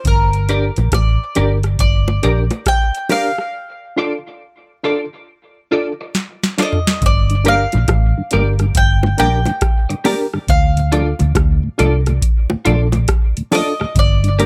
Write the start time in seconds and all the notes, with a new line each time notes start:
0.05 G1 A#4, kick, closed hi-hat
0.33 closed hi-hat
0.49 D4 G4 A#4 D5, closed hi-hat
0.76 A#1, closed hi-hat, high bongo
0.92 A1 D5, kick, cross-stick, closed hi-hat, high bongo
1.35 G1 D4 G4 A#4 D5, closed hi-hat, low bongo
1.63 cross-stick, closed hi-hat
1.79 G1 D5, kick, closed hi-hat
2.08 high bongo
2.23 A#1 D4 G4 A#4 D5, closed hi-hat
2.51 muted clean electric guitar stroke, closed hi-hat, high bongo
2.66 G5, kick, cross-stick, closed hi-hat
2.95 closed hi-hat
3.09 D4 G4 A#4 D5 F5, open hi-hat, high bongo, low bongo
3.38 cross-stick
3.96 D4 F4 A4 D5
4.83 D4 F4 A4 D5
5.71 D4 F4 A4 D5
6.01 muted clean electric guitar stroke
6.15 snare
6.43 snare
6.58 D4 F4 A4 D5, snare
6.62 D#5
6.73 floor tom
6.87 snare
7.02 G1, kick, closed hi-hat
7.06 D5
7.30 G2 D3, closed hi-hat
7.44 G3 A#3 D4 G4 A#4 D5 F5, closed hi-hat
7.72 A#1 G2 D3, closed hi-hat, high bongo
7.88 A1, kick, cross-stick, closed hi-hat, high bongo
8.18 G2 D3
8.31 G1 G3 A#3 D4 G4 A#4 D5, closed hi-hat
8.59 G2 D3 G4 A#4, cross-stick, closed hi-hat
8.75 G1 G5, kick, closed hi-hat
9.03 G2 D3, high bongo
9.18 A#1 G3 A#3 D4 G4 A#4 D5 G5, closed hi-hat, high bongo
9.46 G2 D3, muted clean electric guitar stroke, closed hi-hat, high bongo
9.61 kick, cross-stick, closed hi-hat
9.89 G2 D3, muted clean electric guitar stroke, closed hi-hat
10.04 G3 A#3 D4 G4 A#4 D5, open hi-hat, high bongo, low bongo
10.33 G2 D3, cross-stick
10.48 D2 F5, kick, closed hi-hat
10.76 D2 A2, closed hi-hat
10.92 F3 A3 D4 F4 A4 D5, closed hi-hat
11.19 D2 A2, closed hi-hat, high bongo
11.35 D2, kick, cross-stick, closed hi-hat, high bongo
11.63 D2 A2
11.78 C2 F3 A3 D4 F4 A4 D5, closed hi-hat
12.06 D2 A2 F4 A4, cross-stick, closed hi-hat
12.22 kick, closed hi-hat
12.50 D2 A2, high bongo
12.65 A#1 F3 A3 D4 F4 A4 D5, closed hi-hat, high bongo
12.92 D2 A2, muted clean electric guitar stroke, closed hi-hat, high bongo
13.08 kick, cross-stick, closed hi-hat
13.37 D2 A2, closed hi-hat
13.51 F3 A3 D4 F4 A4 D5 D#5, open hi-hat, high bongo, low bongo
13.80 D2 A2, muted clean electric guitar stroke, cross-stick
13.95 G1 D5, kick, closed hi-hat
14.24 G2 D3, closed hi-hat
14.39 G3 A#3 D4 G4 A#4 D5, closed hi-hat